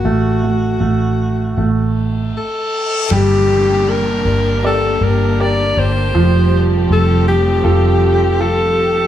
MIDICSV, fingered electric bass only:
0, 0, Header, 1, 2, 480
1, 0, Start_track
1, 0, Tempo, 764331
1, 31, Time_signature, 4, 2, 24, 8
1, 2912, Tempo, 750939
1, 5747, End_track
2, 0, Start_track
2, 0, Title_t, "Fingered electric bass"
2, 0, Program_c, 0, 33
2, 25, Note_on_c, 0, 33, 83
2, 481, Note_off_c, 0, 33, 0
2, 505, Note_on_c, 0, 33, 67
2, 963, Note_off_c, 0, 33, 0
2, 988, Note_on_c, 0, 33, 79
2, 1447, Note_off_c, 0, 33, 0
2, 1951, Note_on_c, 0, 31, 105
2, 2646, Note_off_c, 0, 31, 0
2, 2668, Note_on_c, 0, 31, 82
2, 3126, Note_off_c, 0, 31, 0
2, 3149, Note_on_c, 0, 31, 98
2, 3609, Note_off_c, 0, 31, 0
2, 3637, Note_on_c, 0, 31, 87
2, 3861, Note_off_c, 0, 31, 0
2, 3878, Note_on_c, 0, 29, 102
2, 4332, Note_off_c, 0, 29, 0
2, 4359, Note_on_c, 0, 29, 92
2, 4808, Note_off_c, 0, 29, 0
2, 4834, Note_on_c, 0, 29, 94
2, 5747, Note_off_c, 0, 29, 0
2, 5747, End_track
0, 0, End_of_file